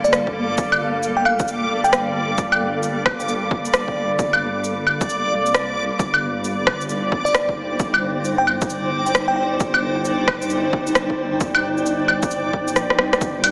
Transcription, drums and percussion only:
0.05 shaker medium
0.13 cross-stick medium
0.13 shaker medium
0.27 kick medium
0.58 kick loud
0.58 shaker medium
0.72 claves medium
1.03 shaker medium
1.25 claves medium
1.39 kick loud
1.39 shaker medium
1.48 shaker medium
1.85 shaker medium
1.93 cross-stick loud
1.93 shaker medium
2.38 kick loud
2.38 shaker medium
2.52 claves medium
2.83 shaker medium
3.06 kick loud
3.06 cross-stick loud
3.06 claves soft
3.20 shaker medium
3.28 shaker medium
3.51 kick loud
3.65 shaker medium
3.74 cross-stick loud
3.74 shaker medium
3.88 kick medium
4.19 kick loud
4.19 shaker medium
4.33 claves medium
4.64 shaker medium
4.87 claves soft
5.01 kick loud
5.01 shaker medium
5.09 shaker soft
5.46 shaker soft
5.54 cross-stick loud
5.54 shaker medium
5.99 kick loud
5.99 shaker soft
6.14 claves medium
6.44 shaker medium
6.67 kick loud
6.67 cross-stick loud
6.67 claves soft
6.81 shaker medium
6.89 shaker soft
7.12 kick loud
7.26 shaker soft
7.35 cross-stick loud
7.35 shaker soft
7.49 kick medium
7.79 kick loud
7.79 shaker soft
7.94 claves medium
8.25 shaker medium
8.47 claves soft
8.61 kick loud
8.61 shaker medium
8.70 shaker medium
9.06 shaker medium
9.15 cross-stick medium
9.15 shaker medium
9.60 kick loud
9.60 shaker medium
9.74 claves medium
10.05 shaker medium
10.28 kick medium
10.28 cross-stick loud
10.28 claves medium
10.42 shaker medium
10.50 shaker medium
10.73 kick loud
10.87 shaker medium
10.95 cross-stick medium
10.95 shaker medium
11.10 kick medium
11.40 kick loud
11.40 shaker medium
11.55 claves medium
11.77 shaker soft
11.86 shaker medium
12.08 claves medium
12.23 kick loud
12.23 shaker medium
12.31 shaker medium
12.53 kick medium
12.68 shaker medium
12.76 cross-stick medium
12.76 shaker medium
12.90 cross-stick medium
12.99 cross-stick medium
13.13 cross-stick medium
13.13 shaker soft
13.21 kick loud
13.21 shaker medium
13.44 open hi-hat medium
13.44 claves medium

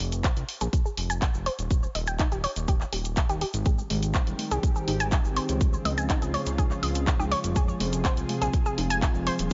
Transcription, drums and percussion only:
0.12 closed hi-hat soft
0.12 shaker medium
0.24 kick loud
0.24 clap loud
0.24 closed hi-hat medium
0.24 shaker medium
0.37 closed hi-hat soft
0.37 shaker soft
0.49 open hi-hat medium
0.61 closed hi-hat soft
0.61 shaker medium
0.73 kick loud
0.73 closed hi-hat medium
0.73 shaker medium
0.86 shaker soft
0.97 open hi-hat loud
1.10 closed hi-hat soft
1.10 shaker medium
1.22 kick loud
1.22 clap loud
1.22 closed hi-hat medium
1.22 shaker medium
1.34 shaker soft
1.46 open hi-hat medium
1.59 closed hi-hat soft
1.59 shaker medium
1.71 kick loud
1.71 closed hi-hat medium
1.71 shaker medium
1.83 shaker soft
1.95 open hi-hat loud
2.07 closed hi-hat soft
2.07 shaker medium
2.19 kick loud
2.19 clap loud
2.19 closed hi-hat medium
2.19 shaker medium
2.32 closed hi-hat soft
2.32 shaker soft
2.44 open hi-hat medium
2.56 closed hi-hat soft
2.56 shaker medium
2.68 kick loud
2.68 closed hi-hat medium
2.68 shaker medium
2.81 clap soft
2.81 shaker soft
2.93 open hi-hat loud
3.05 closed hi-hat soft
3.05 shaker medium
3.16 kick loud
3.16 clap loud
3.16 closed hi-hat medium
3.16 shaker medium
3.29 closed hi-hat soft
3.29 shaker soft
3.41 open hi-hat medium
3.54 closed hi-hat soft
3.54 shaker medium
3.65 kick loud
3.65 closed hi-hat medium
3.65 shaker medium
3.79 shaker soft
3.90 open hi-hat loud
3.90 low conga medium
4.03 closed hi-hat soft
4.03 shaker medium
4.14 kick loud
4.14 clap loud
4.14 closed hi-hat medium
4.14 shaker medium
4.27 closed hi-hat soft
4.27 shaker soft
4.39 open hi-hat medium
4.39 low conga medium
4.51 closed hi-hat soft
4.51 shaker medium
4.63 kick loud
4.63 closed hi-hat medium
4.63 shaker medium
4.76 shaker soft
4.88 open hi-hat loud
4.88 high conga medium
5.00 closed hi-hat soft
5.00 shaker medium
5.12 kick loud
5.12 clap loud
5.12 closed hi-hat medium
5.12 high conga medium
5.12 shaker medium
5.25 shaker soft
5.36 open hi-hat medium
5.49 closed hi-hat soft
5.49 shaker medium
5.61 kick loud
5.61 closed hi-hat medium
5.61 shaker medium
5.73 shaker soft
5.85 open hi-hat medium
5.85 low conga medium
5.98 closed hi-hat soft
5.98 shaker medium
6.10 kick loud
6.10 clap loud
6.10 closed hi-hat medium
6.10 shaker medium
6.22 closed hi-hat soft
6.22 shaker soft
6.34 open hi-hat medium
6.34 low conga medium
6.46 closed hi-hat soft
6.46 shaker medium
6.58 kick loud
6.58 closed hi-hat medium
6.58 high conga medium
6.58 shaker medium
6.71 clap soft
6.71 shaker soft
6.83 open hi-hat loud
6.95 closed hi-hat soft
6.95 shaker medium
7.07 kick loud
7.07 clap loud
7.07 closed hi-hat medium
7.07 high conga medium
7.07 shaker medium
7.20 high conga medium
7.20 shaker soft
7.32 open hi-hat medium
7.44 closed hi-hat soft
7.44 shaker medium
7.56 kick loud
7.56 closed hi-hat medium
7.56 shaker medium
7.69 shaker soft
7.80 open hi-hat medium
7.80 low conga medium
7.93 closed hi-hat medium
7.93 shaker medium
8.05 kick loud
8.05 clap loud
8.05 closed hi-hat medium
8.05 shaker medium
8.17 closed hi-hat soft
8.17 shaker soft
8.29 open hi-hat medium
8.29 low conga medium
8.42 closed hi-hat medium
8.42 shaker medium
8.53 kick loud
8.53 closed hi-hat medium
8.53 shaker medium
8.66 shaker soft
8.78 open hi-hat loud
8.78 high conga medium
8.90 closed hi-hat medium
8.90 shaker medium
9.02 kick loud
9.02 clap loud
9.02 closed hi-hat medium
9.02 high conga medium
9.02 shaker medium
9.15 shaker soft
9.27 open hi-hat medium
9.39 closed hi-hat medium
9.39 shaker medium

